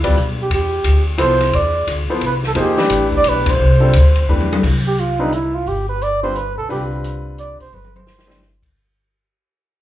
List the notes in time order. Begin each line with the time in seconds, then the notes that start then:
Already playing: D2
0.03 G3 C4 F4 B4 D5, kick, ride
0.16 B1, hi-hat pedal
0.42 G4
0.50 E2, ride
0.54 G4
0.84 D2, hi-hat pedal, ride
1.18 C2 F3 B3 E4 A4 C5, hi-hat pedal, ride
1.22 C5
1.41 snare, ride
1.53 E2 D5, ride
1.87 D2, hi-hat pedal, ride
2.08 F3 B3 E4 A4 C5, muted upright bass stroke
2.21 C2, ride
2.26 B4
2.43 A4, snare
2.55 E2 F3 A#3 D#4 G#4 C5, ride
2.60 G4
2.77 E3 A3 D4 G4 B4, snare
2.90 A1, hi-hat pedal, ride
3.12 kick
3.17 D5
3.24 B1, hi-hat pedal, ride
3.29 B4
3.46 kick, ride
3.50 C5
3.60 C2
3.80 D3 G3 C4 F4 A4
3.93 D2, hi-hat pedal, ride
4.16 ride
4.29 E2 E3 A3 D4 G4 B4
4.41 high tom
4.52 high tom
4.63 C2, kick, crash
4.87 G4
4.98 F4, closed hi-hat
5.19 D3 G3 C4 D#4 F4 B4
5.32 E4, closed hi-hat
5.55 F4
5.66 G1 G4, open hi-hat
5.89 B4
6.01 D5, closed hi-hat
6.23 D3 G3 C4 F4 B4 C5, open hi-hat
6.35 B4, closed hi-hat
6.57 B1 A4
6.69 C2 D3 G3 C4 F4 G4 B4, open hi-hat
7.04 closed hi-hat
7.38 D5, closed hi-hat
7.59 B1 C5, open hi-hat
7.71 G1 B4, high tom
7.84 high tom
7.96 C5, high tom
8.07 snare
8.19 snare
8.27 E3 A3 D4 G4 C5, snare
8.42 snare
8.63 kick, crash